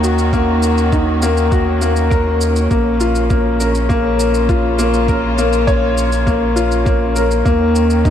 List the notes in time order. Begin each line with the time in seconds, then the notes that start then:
Already playing: D#2 D#3 A#3 C#4 D#4 F#4 A#4
0.03 F#4, shaker
0.18 shaker
0.33 A#3, kick, shaker
0.63 shaker
0.78 shaker
0.93 D#4, kick, shaker
1.22 A#3, shaker
1.37 shaker
1.51 F#4, kick, shaker
1.81 A#3, shaker
1.96 shaker
2.10 A#4, kick, shaker
2.41 shaker
2.56 shaker
2.70 A#1 C#3 A#3, kick, shaker
3.00 F4, shaker
3.15 shaker
3.30 A#3, kick, shaker
3.60 A#4, shaker
3.75 shaker
3.82 F4
3.89 A#3, kick, shaker
4.20 shaker
4.34 shaker
4.49 F4, kick, shaker
4.79 A#3, shaker
4.94 shaker
5.08 A#4, kick, shaker
5.38 A#3, shaker
5.53 shaker
5.67 C#5, kick, shaker
5.98 shaker
6.12 shaker
6.26 A#3, kick, shaker
6.56 F4, shaker
6.72 shaker
6.85 A#3, kick, shaker
7.16 A#4, shaker
7.31 shaker
7.45 D#2 D#3 A#3, kick, shaker
7.75 shaker
7.90 shaker
8.05 D#4, kick, shaker